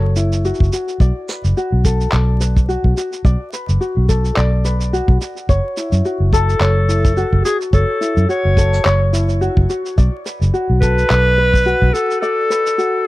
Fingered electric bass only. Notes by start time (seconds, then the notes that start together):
Already playing: F#1
0.61 F#1
1.00 B1
1.44 F#1
1.72 B1
2.13 B1
2.84 B1
3.25 B1
3.69 F#1
3.97 B1
4.37 B1
5.08 B1
5.49 F#1
5.92 F#2
6.20 F#1
6.60 F#1
7.33 F#1
7.73 F#1
8.17 F#2
8.45 F#1
8.85 F#1
9.57 F#1
9.98 B1
10.41 F#1
10.70 B1
11.10 B1
11.82 B1